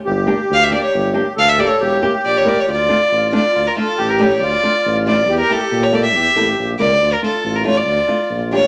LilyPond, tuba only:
\new Staff \with { instrumentName = "Tuba" } { \clef bass \time 2/4 \key d \minor \tempo 4 = 138 g,,4 d,4 | g,,4 d,4 | e,,4 bes,,4 | d,4 a,,4 |
d,8 r8 a,,4 | d,8 r8 a,,4 | e,8 r8 bes,4 | e,8 a,,8 bes,,8 cis,8 |
d,8 r8 a,,4 | d,8 r8 bes,,4 | }